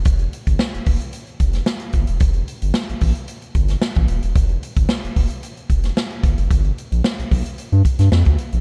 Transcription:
<<
  \new Staff \with { instrumentName = "Analog synth bass" } { \clef bass \time 4/4 \key f \mixolydian \tempo 4 = 112 f,,8 r16 g,,16 r16 f,,16 f,,16 r8. f,,8 r8 g,,16 e,,16 | f,,8 r16 g,,16 r16 a,,16 a,,16 r8. g,,8 r16 a,,16 ees,,16 e,,16 | f,,8 r16 g,,16 r16 f,,16 f,,16 r8. f,,8 r8 g,,16 fis,,16 | g,,8 r16 ais,,16 r16 b,,16 b,,16 r8 g,16 r16 g,16 f,16 d,16 r16 ais,,16 | }
  \new DrumStaff \with { instrumentName = "Drums" } \drummode { \time 4/4 <hh bd>16 hh16 hh16 <hh bd>16 sn16 hh16 <hho bd>16 hh16 hh16 hh16 <hh bd>16 <hh sn>16 sn16 hh16 <hh bd>16 hh16 | <hh bd>16 hh16 hh16 hh16 sn16 hh16 <hho bd>16 hh16 hh16 hh16 <hh bd>16 <hh sn>16 sn16 <hh bd>16 hh16 hh16 | <hh bd>16 hh16 hh16 <hh bd>16 sn16 hh16 <hho bd>16 hh16 hh16 hh16 <hh bd>16 <hh sn>16 sn16 hh16 <hh bd>16 hh16 | <hh bd>16 hh16 hh16 hh16 sn16 hh16 <hho bd>16 hh16 hh16 hh16 <hh bd>16 <hh sn>16 sn16 <hh bd>16 hh16 hh16 | }
>>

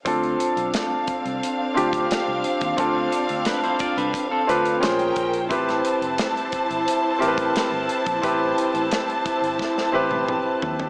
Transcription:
<<
  \new Staff \with { instrumentName = "String section" } { \time 4/4 \key d \dorian \tempo 4 = 88 <c' d' f''>1~ | <c' d' f''>2. <des' bes' g''>4 | <e' c'' a''>1~ | <e' c'' a''>1 | }
  \new Staff \with { instrumentName = "Clean electric guitar" } { \time 4/4 \key d \dorian r1 | r4 <d' b'>16 <e' c''>16 <f' d''>16 <d' b'>8 <c' a'>8. r4 | r1 | r1 | }
  \new Staff \with { instrumentName = "Grand piano" } { \time 4/4 \key d \dorian <c' d' f' a'>2 r8 <c' d' f' g'>4. | <c' d' f' a'>2 r8 <c' d' f' b'>8 <des' f' aes' c''>4 | <c' e' g' b'>2 r8 <c' e' g' bes' b'>4. | <c' e' g' b'>2 r8 <c' e' g' b'>4. | }
  \new Staff \with { instrumentName = "Fingered electric bass" } { \clef bass \time 4/4 \key d \dorian d,8 r16 b,,16 r8. c,16 r8 d,8 r16 c,16 r16 ees,16 | d,8 r16 d,16 r8. c,16 r8 d,8 bes,,8 bes,,8 | a,,8 r16 f,,16 r8. g,,16 r8 a,,8 r16 g,,16 r16 bes,,16 | a,,8 r16 a,,16 r8. g,,16 r8 a,,8 r8 ees,8 | }
  \new DrumStaff \with { instrumentName = "Drums" } \drummode { \time 4/4 <hh bd>16 hh16 hh16 hh16 <hh sn>8 <hh bd>16 hh16 hh8 hh16 <hh bd>16 <hh sn>8 hh16 <hh bd>16 | <hh bd>8 hh16 hh16 <hh sn>16 hh16 <hh bd>16 hh16 <hh bd>8 hh16 hh16 <hh sn>16 hh16 <hh bd>16 hh16 | <hh bd>16 <hh sn>16 hh16 hh16 <hh sn>16 hh16 <hh bd>16 hh16 hh8 hh16 <hh bd>16 <hh sn>8 hh16 <hh bd>16 | <hh bd>8 hh16 hh16 <hh sn>16 hh16 <hh bd>16 hh16 <bd sn>16 sn8 tommh16 toml8 tomfh16 tomfh16 | }
>>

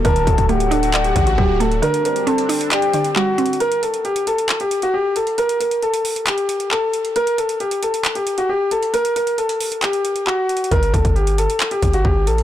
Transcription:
<<
  \new Staff \with { instrumentName = "Flute" } { \time 4/4 \key g \minor \tempo 4 = 135 a''4 fis''2. | r2 g''4 r4 | r1 | r1 |
r1 | r1 | r1 | }
  \new Staff \with { instrumentName = "Grand piano" } { \time 4/4 \key g \minor bes'8 a'8 g'8 a'8. g'8 fis'16 g'8 a'8 | bes'8 bes'8 a'4 g'4 fis'4 | bes'8 a'8 g'8 a'8. g'8 fis'16 g'8 a'8 | bes'8 bes'8 a'4 g'4 a'4 |
bes'8 a'8 g'8 a'8. g'8 fis'16 g'8 a'8 | bes'8 bes'8 a'4 g'4 fis'4 | bes'8 a'8 g'8 a'8. g'8 fis'16 g'8 a'8 | }
  \new Staff \with { instrumentName = "Analog synth pad" } { \time 4/4 \key g \minor << { <fis a fis'>1 | <g c' d'>1 | r1 | r1 |
r1 | r1 | r1 | } \\ { d1~ | d1 | r1 | r1 |
r1 | r1 | r1 | } >> }
  \new Staff \with { instrumentName = "Synth pluck" } { \time 4/4 \key g \minor d4 a8 d'8 d''8 d8 fis8 a8 | d4 c'8 d'8 d''8 d8 g8 c'8 | r1 | r1 |
r1 | r1 | r1 | }
  \new Staff \with { instrumentName = "808-style bass" } { \clef bass \time 4/4 \key g \minor d,,8 d,,16 d,,4.~ d,,16 a,,8 d,,4 | r1 | r1 | r1 |
r1 | r1 | g,,8 g,,16 g,,4 r8. g,,8 g,,8 a,,8 | }
  \new DrumStaff \with { instrumentName = "Drums" } \drummode { \time 4/4 <hh bd>16 hh16 <hh bd>16 <hh bd>16 hh16 hh16 hh16 hh16 <hc hh>16 hh16 <hh bd>16 hh16 bd8 hh16 hh16 | hh16 hh16 hh16 hh16 hh16 hh16 hho16 hh16 <hc hh>16 hh16 hh16 hh16 \tuplet 3/2 { hc16 r16 r16 hh16 hh16 hh16 } | hh16 hh16 hh16 hh16 hh16 hh16 hh16 hh16 <hc hh>16 hh16 hh16 hh16 r8 hh16 hh16 | hh16 hh16 hh16 hh16 hh16 hh16 hho16 hh16 <hc hh>16 hh16 hh16 hh16 hc8 hh16 hh16 |
hh16 hh16 hh16 hh16 hh16 hh16 hh16 hh16 <hc hh>16 hh16 hh16 hh16 r8 hh16 hh16 | hh16 hh16 hh16 hh16 hh16 hh16 hho16 hh16 <hc hh>16 hh16 hh16 hh16 \tuplet 3/2 { hc16 r16 r16 hh16 hh16 hh16 } | <hh bd>16 hh16 <hh bd>16 <hh bd>16 hh16 hh16 hh16 hh16 <hc hh>16 hh16 <hh bd>16 hh16 bd8 hh16 hh16 | }
>>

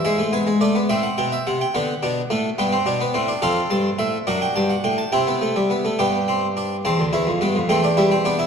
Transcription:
<<
  \new Staff \with { instrumentName = "Harpsichord" } { \time 6/8 \key e \phrygian \tempo 4. = 71 << { e''8 gis''8 d''8 e''16 fis''16 g''16 e''16 fis''16 g''16 | fis''4. g''4. | \key c \major f''8 a''8 e''8 fis''16 g''16 a''16 fis''16 g''16 a''16 | g''4. g''4. |
a''4. g''4. | } \\ { r2. | r2. | a'4. fis'4. | e'4. g'4. |
r8 e'8 b8 c'16 d'16 e'16 c'16 d'16 e'16 | } >> }
  \new Staff \with { instrumentName = "Harpsichord" } { \clef bass \time 6/8 \key e \phrygian << { gis16 a16 b16 gis16 a16 b16 c'4. | b8 d'8 a8 b16 c'16 d'16 b16 c'16 d'16 | \key c \major c'4. d'4. | c'16 b16 a16 g16 b16 a16 b8 c'8 d'8 |
c'4. a8 g8 b8 | } \\ { gis,4. a,8 b,8 c8 | d8 b,8 a,8 g,8 b,8 a,8 | f,8 g,8 a,8 fis,8 g,8 a,8 | c4. g,4. |
e,16 d,16 e,16 f,16 g,16 f,16 e,4. | } >> }
>>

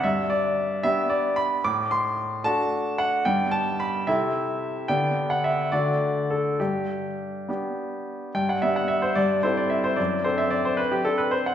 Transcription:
\new Staff \with { instrumentName = "Grand piano" } { \time 6/8 \key g \major \tempo 4. = 74 << { e''8 d''4 e''8 d''8 b''8 | d'''8 c'''4 a''4 fis''8 | g''8 a''8 b''8 e''8 r4 | g''8. fis''16 e''8 d''4 a'8 |
g'2~ g'8 r8 | g''16 fis''16 e''16 fis''16 e''16 c''16 d''8 c''16 d''16 e''16 c''16 | d''8 c''16 e''16 d''16 c''16 b'16 g'16 a'16 b'16 c''16 fis''16 | } \\ { g,4. <b d' g'>4. | a,4. <a d' fis'>4. | <g, b d' g'>4. <c c' e' a'>4. | <d b d' g'>4. <d a d' fis'>4. |
g,4. <b d' g'>4. | g,8 <b d' g'>4 g,8 <c' e' a'>4 | fis,8 <c' d' a'>4. <c' d'>4 | } >> }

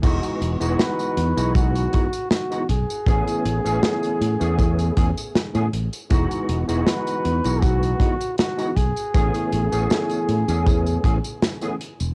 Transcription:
<<
  \new Staff \with { instrumentName = "Flugelhorn" } { \time 4/4 \key e \major \tempo 4 = 79 r4 b'4 fis'4 fis'8 gis'8~ | gis'2.~ gis'8 r8 | r4 b'4 fis'4 fis'8 gis'8~ | gis'2.~ gis'8 r8 | }
  \new Staff \with { instrumentName = "Tine electric piano" } { \time 4/4 \key e \major <e gis b dis' fis'>8. <e gis b dis' fis'>4 <e gis b dis' fis'>8. <e gis b dis' fis'>16 r8 <e gis b dis' fis'>16 r8 | <e a b cis' gis'>8. <e a b cis' gis'>4 <e a b cis' gis'>8. <e a b cis' gis'>16 r8 <e a b cis' gis'>16 r8 | <e gis b dis' fis'>8. <e gis b dis' fis'>4 <e gis b dis' fis'>8. <e gis b dis' fis'>16 r8 <e gis b dis' fis'>16 r8 | <e a b cis' gis'>8. <e a b cis' gis'>4 <e a b cis' gis'>8. <e a b cis' gis'>16 r8 <e a b cis' gis'>16 r8 | }
  \new Staff \with { instrumentName = "Fingered electric bass" } { \clef bass \time 4/4 \key e \major e,,16 r16 e,,16 e,,16 r8 e,16 b,,8. r4 b,,16 r16 | a,,16 r16 a,,16 a,,16 r8 a,16 e,8. e,16 r8 a,16 a,,16 r16 | e,,16 r16 e,,16 e,,16 r8 e,16 b,,8. r4 b,,16 r16 | a,,16 r16 a,,16 a,,16 r8 a,16 e,8. a,,16 r4 e,,16 | }
  \new DrumStaff \with { instrumentName = "Drums" } \drummode { \time 4/4 <cymc hh bd tamb>16 <hh tamb>16 hh16 <hh tamb>16 <hh sn tamb>16 <hh tamb>16 hh16 <hh tamb>16 <hh bd tamb>16 <hh tamb>16 <hh bd>16 <hh tamb>16 <hh sn tamb>16 <hh tamb>16 <hh bd>16 <hh tamb>16 | <hh bd tamb>16 <hh tamb>16 hh16 <hh tamb>16 <hh sn tamb>16 <hh tamb>16 hh16 <hh tamb>16 <hh bd tamb>16 <hh tamb>16 <hh bd>16 <hh tamb>16 <hh sn tamb>16 <hh tamb>16 hh16 <hh tamb>16 | <hh bd tamb>16 <hh tamb>16 hh16 <hh tamb>16 <hh sn tamb>16 <hh tamb>16 hh16 <hh tamb>16 <hh bd tamb>16 <hh tamb>16 <hh bd>16 <hh tamb>16 <hh sn tamb>16 <hh tamb>16 <hh bd>16 <hh tamb>16 | <hh bd tamb>16 <hh tamb>16 hh16 <hh tamb>16 <hh sn tamb>16 <hh tamb>16 hh16 <hh tamb>16 <hh bd tamb>16 <hh tamb>16 <hh bd>16 <hh tamb>16 <hh sn tamb>16 <hh tamb>16 hh16 <hh tamb>16 | }
>>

